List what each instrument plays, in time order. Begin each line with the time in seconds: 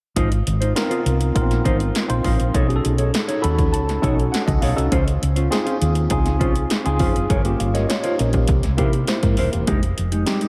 0.16 fretless electric bass G#1, clean electric guitar D#4 F4 C5, kick, closed hi-hat
0.32 closed hi-hat
0.46 fretless electric bass G#1, muted clean electric guitar stroke, closed hi-hat
0.61 clean electric guitar D#4 F4 C5, closed hi-hat
0.75 tine electric piano B3 D#4 F4 A#4, muted clean electric guitar stroke, snare, closed hi-hat
0.82 tine electric piano C4
0.90 clean electric guitar D#4 F4 C5, closed hi-hat
1.05 fretless electric bass C2, muted clean electric guitar stroke, closed hi-hat
1.20 muted clean electric guitar stroke, closed hi-hat
1.35 fretless electric bass A#1, tine electric piano B3 D#4 F4 A#4, kick, closed hi-hat
1.41 tine electric piano C4
1.50 muted clean electric guitar stroke, snare, closed hi-hat
1.64 fretless electric bass G#1, clean electric guitar D#4 F4 C5, kick, closed hi-hat
1.79 muted clean electric guitar stroke, closed hi-hat
1.95 snare, closed hi-hat
2.08 fretless electric bass A#1, tine electric piano C4 D#4 F4 C5, muted clean electric guitar stroke, closed hi-hat
2.24 fretless electric bass A1, clean electric guitar D#4 F4 C5, kick, open hi-hat
2.39 fretless electric bass A#1, muted clean electric guitar stroke, closed hi-hat
2.54 fretless electric bass B1, clean electric guitar D#4 A4 C#5, kick, closed hi-hat
2.68 tine electric piano C#4 D#4 F#4 G#4, muted clean electric guitar stroke, closed hi-hat
2.76 tine electric piano A4
2.84 fretless electric bass B1, muted clean electric guitar stroke, closed hi-hat
2.98 clean electric guitar D#4 A4 C#5, closed hi-hat
3.13 muted clean electric guitar stroke, snare, closed hi-hat
3.28 clean electric guitar D#4 A4 C#5, closed hi-hat
3.42 fretless electric bass D#2, tine electric piano C#4 D#4 F#4 A4 B5, muted clean electric guitar stroke, closed hi-hat
3.58 muted clean electric guitar stroke, kick, closed hi-hat
3.73 fretless electric bass C#2, tine electric piano A5, closed hi-hat
3.87 muted clean electric guitar stroke, snare, closed hi-hat
4.02 fretless electric bass B1, tine electric piano C#4 D#4 F#4 A4 G#5, clean electric guitar D#4 A4 C#5, kick, closed hi-hat
4.17 muted clean electric guitar stroke, closed hi-hat
4.32 tine electric piano F#5, snare, closed hi-hat
4.46 fretless electric bass C#2, tine electric piano D#5, muted clean electric guitar stroke, kick, closed hi-hat
4.62 fretless electric bass B1, clean electric guitar D#4 A4 C#5, tine electric piano F5, open hi-hat
4.76 fretless electric bass C2, tine electric piano C#4 D#4 F#4 A4, muted clean electric guitar stroke, closed hi-hat
4.91 fretless electric bass C#2, clean electric guitar C#4 F4 C5, kick, closed hi-hat
5.07 muted clean electric guitar stroke, closed hi-hat
5.21 fretless electric bass C#2, muted clean electric guitar stroke, closed hi-hat
5.36 clean electric guitar C#4 F4 C5, closed hi-hat
5.50 tine electric piano C4 D#4 F4 G#4, muted clean electric guitar stroke, snare, closed hi-hat
5.65 clean electric guitar C#4 F4 C5, closed hi-hat
5.80 fretless electric bass D#2, muted clean electric guitar stroke, closed hi-hat
5.95 muted clean electric guitar stroke, closed hi-hat
6.10 fretless electric bass C#2, tine electric piano C4 D#4 F4 G#4, kick, closed hi-hat
6.25 muted clean electric guitar stroke, snare, closed hi-hat
6.39 fretless electric bass C2, clean electric guitar C#4 F4 C5, kick, closed hi-hat
6.55 muted clean electric guitar stroke, closed hi-hat
6.70 snare, closed hi-hat
6.84 fretless electric bass C#2, tine electric piano C4 D#4 F4 G#4, muted clean electric guitar stroke, closed hi-hat
6.99 fretless electric bass F1, clean electric guitar C#4 F4 C5, kick, open hi-hat
7.15 fretless electric bass F#1, muted clean electric guitar stroke, closed hi-hat
7.29 fretless electric bass G1, clean electric guitar F4 A#4 C#5, kick, closed hi-hat
7.44 tine electric piano A#3 C#4 F4 G4, muted clean electric guitar stroke, closed hi-hat
7.60 fretless electric bass G1, tine electric piano F5, muted clean electric guitar stroke, closed hi-hat
7.74 clean electric guitar F4 A#4 C#5, tine electric piano G4 D#5, snare, closed hi-hat
7.89 tine electric piano F4 C#5, muted clean electric guitar stroke, snare, closed hi-hat
8.04 tine electric piano D#4 C5, clean electric guitar F4 A#4 C#5, closed hi-hat
8.18 fretless electric bass A#1, tine electric piano C#4 A#4, muted clean electric guitar stroke, closed hi-hat
8.32 tine electric piano A#3 G4, muted clean electric guitar stroke, kick, closed hi-hat
8.48 fretless electric bass C2, kick, closed hi-hat
8.63 fretless electric bass C2, muted clean electric guitar stroke, snare, closed hi-hat
8.77 fretless electric bass C3, tine electric piano A#3 C4 D#4 G4, clean electric guitar E4 A#4 C5, kick, closed hi-hat
8.84 tine electric piano E4
8.93 muted clean electric guitar stroke, closed hi-hat
9.07 tine electric piano E4 C5, muted clean electric guitar stroke, snare, closed hi-hat
9.22 fretless electric bass G#2, tine electric piano A#4, muted clean electric guitar stroke, kick, snare, closed hi-hat
9.37 fretless electric bass D#1, clean electric guitar E4 A#4 C5, open hi-hat
9.52 fretless electric bass E1, tine electric piano A#3 G4, muted clean electric guitar stroke, closed hi-hat
9.67 fretless electric bass F1, clean electric guitar G#3 D#4 G4, kick, closed hi-hat
9.82 muted clean electric guitar stroke, closed hi-hat
9.97 fretless electric bass F1, muted clean electric guitar stroke, closed hi-hat
10.12 clean electric guitar G#3 D#4 G4, closed hi-hat
10.26 tine electric piano G3 C4 D#4 G4, muted clean electric guitar stroke, snare, closed hi-hat
10.32 tine electric piano G#3
10.41 clean electric guitar G#3 D#4 G4, closed hi-hat